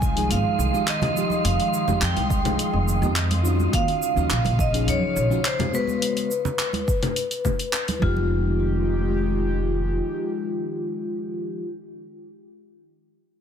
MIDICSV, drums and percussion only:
0, 0, Header, 1, 2, 480
1, 0, Start_track
1, 0, Key_signature, -4, "minor"
1, 0, Tempo, 571429
1, 1216, Time_signature, 4, 2, 24, 8
1, 11264, End_track
2, 0, Start_track
2, 0, Title_t, "Drums"
2, 17, Note_on_c, 9, 36, 98
2, 20, Note_on_c, 9, 69, 72
2, 101, Note_off_c, 9, 36, 0
2, 104, Note_off_c, 9, 69, 0
2, 141, Note_on_c, 9, 46, 40
2, 144, Note_on_c, 9, 69, 33
2, 225, Note_off_c, 9, 46, 0
2, 228, Note_off_c, 9, 69, 0
2, 257, Note_on_c, 9, 46, 65
2, 261, Note_on_c, 9, 69, 47
2, 341, Note_off_c, 9, 46, 0
2, 345, Note_off_c, 9, 69, 0
2, 500, Note_on_c, 9, 69, 72
2, 584, Note_off_c, 9, 69, 0
2, 625, Note_on_c, 9, 69, 36
2, 709, Note_off_c, 9, 69, 0
2, 737, Note_on_c, 9, 39, 95
2, 737, Note_on_c, 9, 46, 63
2, 740, Note_on_c, 9, 69, 44
2, 821, Note_off_c, 9, 39, 0
2, 821, Note_off_c, 9, 46, 0
2, 824, Note_off_c, 9, 69, 0
2, 853, Note_on_c, 9, 64, 74
2, 855, Note_on_c, 9, 63, 87
2, 861, Note_off_c, 9, 64, 0
2, 861, Note_on_c, 9, 46, 41
2, 861, Note_on_c, 9, 64, 78
2, 939, Note_off_c, 9, 63, 0
2, 945, Note_off_c, 9, 46, 0
2, 945, Note_off_c, 9, 64, 0
2, 981, Note_on_c, 9, 69, 73
2, 1065, Note_off_c, 9, 69, 0
2, 1092, Note_on_c, 9, 63, 63
2, 1104, Note_on_c, 9, 69, 32
2, 1176, Note_off_c, 9, 63, 0
2, 1188, Note_off_c, 9, 69, 0
2, 1217, Note_on_c, 9, 46, 69
2, 1220, Note_on_c, 9, 69, 46
2, 1301, Note_off_c, 9, 46, 0
2, 1304, Note_off_c, 9, 69, 0
2, 1341, Note_on_c, 9, 46, 32
2, 1425, Note_off_c, 9, 46, 0
2, 1459, Note_on_c, 9, 69, 73
2, 1543, Note_off_c, 9, 69, 0
2, 1577, Note_on_c, 9, 64, 91
2, 1582, Note_on_c, 9, 69, 31
2, 1661, Note_off_c, 9, 64, 0
2, 1666, Note_off_c, 9, 69, 0
2, 1696, Note_on_c, 9, 39, 97
2, 1696, Note_on_c, 9, 46, 67
2, 1699, Note_on_c, 9, 69, 45
2, 1780, Note_off_c, 9, 39, 0
2, 1780, Note_off_c, 9, 46, 0
2, 1783, Note_off_c, 9, 69, 0
2, 1819, Note_on_c, 9, 46, 32
2, 1820, Note_on_c, 9, 63, 90
2, 1903, Note_off_c, 9, 46, 0
2, 1904, Note_off_c, 9, 63, 0
2, 1935, Note_on_c, 9, 36, 100
2, 1939, Note_on_c, 9, 69, 73
2, 2019, Note_off_c, 9, 36, 0
2, 2023, Note_off_c, 9, 69, 0
2, 2060, Note_on_c, 9, 46, 43
2, 2060, Note_on_c, 9, 64, 80
2, 2063, Note_on_c, 9, 69, 28
2, 2144, Note_off_c, 9, 46, 0
2, 2144, Note_off_c, 9, 64, 0
2, 2147, Note_off_c, 9, 69, 0
2, 2177, Note_on_c, 9, 46, 69
2, 2180, Note_on_c, 9, 69, 43
2, 2261, Note_off_c, 9, 46, 0
2, 2264, Note_off_c, 9, 69, 0
2, 2421, Note_on_c, 9, 69, 70
2, 2505, Note_off_c, 9, 69, 0
2, 2543, Note_on_c, 9, 69, 35
2, 2627, Note_off_c, 9, 69, 0
2, 2655, Note_on_c, 9, 39, 99
2, 2655, Note_on_c, 9, 46, 68
2, 2658, Note_on_c, 9, 69, 44
2, 2739, Note_off_c, 9, 39, 0
2, 2739, Note_off_c, 9, 46, 0
2, 2742, Note_off_c, 9, 69, 0
2, 2779, Note_on_c, 9, 46, 46
2, 2782, Note_on_c, 9, 63, 84
2, 2863, Note_off_c, 9, 46, 0
2, 2866, Note_off_c, 9, 63, 0
2, 2898, Note_on_c, 9, 69, 74
2, 2982, Note_off_c, 9, 69, 0
2, 3021, Note_on_c, 9, 63, 59
2, 3023, Note_on_c, 9, 69, 32
2, 3105, Note_off_c, 9, 63, 0
2, 3107, Note_off_c, 9, 69, 0
2, 3135, Note_on_c, 9, 36, 115
2, 3136, Note_on_c, 9, 46, 72
2, 3140, Note_on_c, 9, 69, 46
2, 3219, Note_off_c, 9, 36, 0
2, 3220, Note_off_c, 9, 46, 0
2, 3224, Note_off_c, 9, 69, 0
2, 3261, Note_on_c, 9, 46, 30
2, 3345, Note_off_c, 9, 46, 0
2, 3380, Note_on_c, 9, 69, 76
2, 3464, Note_off_c, 9, 69, 0
2, 3504, Note_on_c, 9, 69, 33
2, 3588, Note_off_c, 9, 69, 0
2, 3617, Note_on_c, 9, 39, 98
2, 3617, Note_on_c, 9, 46, 68
2, 3620, Note_on_c, 9, 69, 42
2, 3701, Note_off_c, 9, 39, 0
2, 3701, Note_off_c, 9, 46, 0
2, 3704, Note_off_c, 9, 69, 0
2, 3735, Note_on_c, 9, 63, 87
2, 3743, Note_on_c, 9, 46, 31
2, 3819, Note_off_c, 9, 63, 0
2, 3827, Note_off_c, 9, 46, 0
2, 3855, Note_on_c, 9, 36, 102
2, 3862, Note_on_c, 9, 69, 71
2, 3939, Note_off_c, 9, 36, 0
2, 3946, Note_off_c, 9, 69, 0
2, 3983, Note_on_c, 9, 46, 43
2, 3986, Note_on_c, 9, 69, 30
2, 4067, Note_off_c, 9, 46, 0
2, 4070, Note_off_c, 9, 69, 0
2, 4099, Note_on_c, 9, 46, 71
2, 4102, Note_on_c, 9, 69, 43
2, 4183, Note_off_c, 9, 46, 0
2, 4186, Note_off_c, 9, 69, 0
2, 4340, Note_on_c, 9, 69, 70
2, 4424, Note_off_c, 9, 69, 0
2, 4464, Note_on_c, 9, 69, 33
2, 4548, Note_off_c, 9, 69, 0
2, 4579, Note_on_c, 9, 39, 98
2, 4579, Note_on_c, 9, 46, 73
2, 4582, Note_on_c, 9, 69, 43
2, 4663, Note_off_c, 9, 39, 0
2, 4663, Note_off_c, 9, 46, 0
2, 4666, Note_off_c, 9, 69, 0
2, 4697, Note_on_c, 9, 64, 85
2, 4701, Note_on_c, 9, 63, 90
2, 4702, Note_off_c, 9, 64, 0
2, 4702, Note_on_c, 9, 46, 46
2, 4702, Note_on_c, 9, 64, 83
2, 4785, Note_off_c, 9, 63, 0
2, 4786, Note_off_c, 9, 46, 0
2, 4786, Note_off_c, 9, 64, 0
2, 4822, Note_on_c, 9, 69, 72
2, 4906, Note_off_c, 9, 69, 0
2, 4935, Note_on_c, 9, 63, 51
2, 4946, Note_on_c, 9, 69, 34
2, 5019, Note_off_c, 9, 63, 0
2, 5030, Note_off_c, 9, 69, 0
2, 5059, Note_on_c, 9, 46, 73
2, 5062, Note_on_c, 9, 69, 47
2, 5143, Note_off_c, 9, 46, 0
2, 5146, Note_off_c, 9, 69, 0
2, 5181, Note_on_c, 9, 46, 33
2, 5184, Note_on_c, 9, 69, 29
2, 5265, Note_off_c, 9, 46, 0
2, 5268, Note_off_c, 9, 69, 0
2, 5300, Note_on_c, 9, 69, 77
2, 5384, Note_off_c, 9, 69, 0
2, 5418, Note_on_c, 9, 64, 91
2, 5425, Note_on_c, 9, 69, 34
2, 5502, Note_off_c, 9, 64, 0
2, 5509, Note_off_c, 9, 69, 0
2, 5538, Note_on_c, 9, 39, 108
2, 5538, Note_on_c, 9, 46, 66
2, 5541, Note_on_c, 9, 69, 45
2, 5622, Note_off_c, 9, 39, 0
2, 5622, Note_off_c, 9, 46, 0
2, 5625, Note_off_c, 9, 69, 0
2, 5654, Note_on_c, 9, 63, 80
2, 5662, Note_on_c, 9, 46, 34
2, 5738, Note_off_c, 9, 63, 0
2, 5746, Note_off_c, 9, 46, 0
2, 5778, Note_on_c, 9, 36, 99
2, 5782, Note_on_c, 9, 69, 75
2, 5862, Note_off_c, 9, 36, 0
2, 5866, Note_off_c, 9, 69, 0
2, 5902, Note_on_c, 9, 46, 45
2, 5902, Note_on_c, 9, 64, 80
2, 5905, Note_on_c, 9, 69, 31
2, 5986, Note_off_c, 9, 46, 0
2, 5986, Note_off_c, 9, 64, 0
2, 5989, Note_off_c, 9, 69, 0
2, 6017, Note_on_c, 9, 46, 72
2, 6021, Note_on_c, 9, 69, 43
2, 6101, Note_off_c, 9, 46, 0
2, 6105, Note_off_c, 9, 69, 0
2, 6141, Note_on_c, 9, 46, 35
2, 6144, Note_on_c, 9, 69, 31
2, 6225, Note_off_c, 9, 46, 0
2, 6228, Note_off_c, 9, 69, 0
2, 6256, Note_on_c, 9, 64, 57
2, 6258, Note_on_c, 9, 36, 58
2, 6259, Note_on_c, 9, 69, 72
2, 6340, Note_off_c, 9, 64, 0
2, 6342, Note_off_c, 9, 36, 0
2, 6343, Note_off_c, 9, 69, 0
2, 6379, Note_on_c, 9, 46, 37
2, 6383, Note_on_c, 9, 69, 35
2, 6463, Note_off_c, 9, 46, 0
2, 6467, Note_off_c, 9, 69, 0
2, 6496, Note_on_c, 9, 39, 107
2, 6496, Note_on_c, 9, 46, 71
2, 6499, Note_on_c, 9, 69, 45
2, 6580, Note_off_c, 9, 39, 0
2, 6580, Note_off_c, 9, 46, 0
2, 6583, Note_off_c, 9, 69, 0
2, 6620, Note_on_c, 9, 46, 45
2, 6623, Note_on_c, 9, 63, 89
2, 6623, Note_on_c, 9, 69, 29
2, 6704, Note_off_c, 9, 46, 0
2, 6707, Note_off_c, 9, 63, 0
2, 6707, Note_off_c, 9, 69, 0
2, 6737, Note_on_c, 9, 36, 103
2, 6821, Note_off_c, 9, 36, 0
2, 6859, Note_on_c, 9, 63, 62
2, 6943, Note_off_c, 9, 63, 0
2, 11264, End_track
0, 0, End_of_file